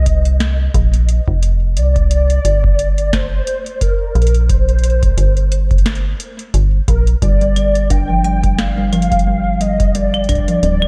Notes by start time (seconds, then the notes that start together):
Already playing: C2 D#5
0.06 kick, closed hi-hat
0.25 closed hi-hat
0.40 snare, closed hi-hat
0.74 A#1, kick, closed hi-hat
0.94 closed hi-hat
1.09 closed hi-hat
1.28 F1, kick
1.43 closed hi-hat
1.77 C2 D5, closed hi-hat
1.96 kick, closed hi-hat
2.11 closed hi-hat
2.30 closed hi-hat
2.45 G1, closed hi-hat
2.64 kick
2.79 closed hi-hat
2.98 closed hi-hat
3.13 C5, kick, snare, closed hi-hat
3.47 closed hi-hat
3.66 closed hi-hat
3.81 A#4, kick, closed hi-hat
4.15 A#1, closed hi-hat
4.22 closed hi-hat
4.27 closed hi-hat
4.34 closed hi-hat
4.49 C5, kick, closed hi-hat
4.69 closed hi-hat
4.79 closed hi-hat
4.84 closed hi-hat
5.03 kick, closed hi-hat
5.18 G1, closed hi-hat
5.37 closed hi-hat
5.52 closed hi-hat
5.71 kick, closed hi-hat
5.78 closed hi-hat
5.86 snare, closed hi-hat
5.95 closed hi-hat
6.20 closed hi-hat
6.39 closed hi-hat
6.54 G1, closed hi-hat
6.88 A#1 A#4, kick, closed hi-hat
7.07 closed hi-hat
7.22 G1 G3 D5, kick, closed hi-hat
7.41 G3, closed hi-hat
7.56 G3, closed hi-hat, claves
7.75 closed hi-hat
7.90 D4 G5, kick, closed hi-hat
8.09 F3
8.24 G3, closed hi-hat
8.44 G3, kick, closed hi-hat
8.58 F5, snare, closed hi-hat
8.78 G3
8.93 F3, closed hi-hat, claves
9.02 closed hi-hat
9.12 G3, kick, closed hi-hat
9.19 closed hi-hat
9.27 G3
9.61 G3 D#5, closed hi-hat
9.80 G3, kick, closed hi-hat
9.95 G3 D5, closed hi-hat
10.14 closed hi-hat, claves
10.24 closed hi-hat
10.29 D4, kick, closed hi-hat, claves
10.32 kick
10.35 kick
10.38 kick
10.40 kick
10.45 F3, kick, closed hi-hat
10.63 D1 G3, closed hi-hat
10.82 G3, claves